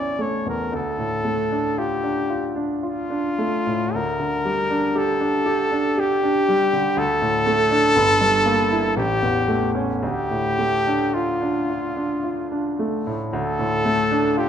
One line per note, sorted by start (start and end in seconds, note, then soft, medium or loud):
0.00 0.69 A1 soft
0.00 0.19 A3 soft
0.00 0.76 C#4 soft
0.00 0.76 E4 soft
0.00 0.23 D5 medium
0.19 0.62 A3 soft
0.19 0.48 C#5 medium
0.46 0.73 E2 soft
0.46 0.74 A#4 medium
0.72 3.90 D2 soft
0.72 1.80 A4 medium
0.98 1.41 A2 soft
1.25 1.68 A3 soft
1.52 1.94 D4 soft
1.78 2.21 F4 soft
1.78 2.55 G4 medium
2.03 2.46 D4 soft
2.30 2.73 F4 soft
2.56 3.00 D4 soft
2.83 3.28 F4 soft
2.83 3.96 F4 medium
3.10 3.56 D4 soft
3.39 3.83 A3 soft
3.67 3.94 A2 soft
3.94 6.94 D2 soft
3.94 4.99 A#4 medium
4.20 4.61 D3 soft
4.45 4.86 G3 soft
4.71 5.11 D4 soft
4.95 5.36 G4 soft
4.95 6.01 A4 medium
5.20 5.62 D4 soft
5.46 5.87 G4 medium
5.72 6.13 D4 soft
5.98 6.38 G4 medium
5.98 7.00 G4 medium
6.23 6.63 D4 soft
6.49 6.88 G3 medium
6.73 6.98 D3 soft
6.96 7.93 D2 medium
6.96 8.97 A4 loud
7.22 7.62 A2 soft
7.46 7.86 A3 medium
7.71 7.96 D4 medium
7.96 8.94 G1 medium
8.21 8.61 G2 medium
8.46 8.87 A#3 medium
8.71 8.97 E4 soft
8.96 9.99 A1 medium
8.96 9.72 G4 medium
9.22 9.65 E2 soft
9.48 9.92 A3 soft
9.75 10.03 C#4 soft
10.02 13.29 D2 medium
10.02 11.15 G4 medium
10.31 10.76 A2 soft
10.59 11.03 A3 soft
10.87 11.31 D4 soft
11.14 12.78 F4 medium
11.14 11.59 F4 soft
11.42 11.86 D4 soft
11.70 12.13 F4 soft
11.97 12.40 D4 soft
12.24 12.68 F4 soft
12.52 12.96 D4 soft
12.79 13.23 A3 soft
13.07 13.33 A2 soft
13.33 14.49 D2 medium
13.33 14.34 A4 medium
13.59 14.01 A2 soft
13.85 14.27 A3 medium
14.11 14.49 D4 medium
14.37 14.49 F4 medium
14.37 14.49 G4 medium